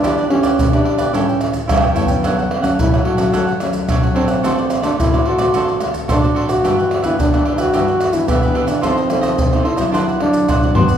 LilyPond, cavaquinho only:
\new Staff \with { instrumentName = "Cavaquinho" } { \time 4/4 \key d \mixolydian \tempo 4 = 109 <e' g' b' d''>16 <g' b' d''>16 r16 <g' b' d''>8 <g' b' d''>16 <e' g' b' d''>16 <g' b' d''>16 <e' a' cis'' g''>16 <a' cis'' g''>16 r8 <e' a' cis'' g''>16 <a' cis'' g''>16 <e' a' cis'' g''>16 <a' cis'' g''>16 | <d' a' cis'' fis''>16 <a' cis'' fis''>16 r16 <a' cis'' fis''>8 <a' cis'' fis''>16 <d' a' cis'' fis''>16 <a' cis'' fis''>16 <d' a' cis'' fis''>16 <a' cis'' fis''>16 r8 <d' a' cis'' fis''>16 <a' cis'' fis''>16 <d' a' cis'' fis''>16 <a' cis'' fis''>16 | <fis' a' c'' d''>16 <a' c'' d''>16 r16 <a' c'' d''>8 <a' c'' d''>16 <fis' a' c'' d''>16 <a' c'' d''>16 <fis' a' c'' d''>16 <a' c'' d''>16 r8 <fis' a' c'' d''>16 <a' c'' d''>16 <fis' a' c'' d''>16 <a' c'' d''>16 | <d' g' b' e''>16 <g' b' e''>16 r16 <g' b' e''>8 <g' b' e''>16 <d' g' b' e''>16 <g' b' e''>16 <d' g' b' e''>16 <g' b' e''>16 r8 <d' g' b' e''>16 <g' b' e''>16 <d' g' b' e''>16 <g' b' e''>16 |
<f' a' c'' ees''>16 <a' c'' ees''>16 r16 <a' c'' ees''>8 <a' c'' ees''>16 <f' a' c'' ees''>16 <a' c'' ees''>16 <d' c'' d'' fis''>16 <c'' d'' fis''>16 r8 <d' c'' d'' fis''>16 <c'' d'' fis''>16 <d' c'' d'' fis''>16 <c'' d'' fis''>16 | }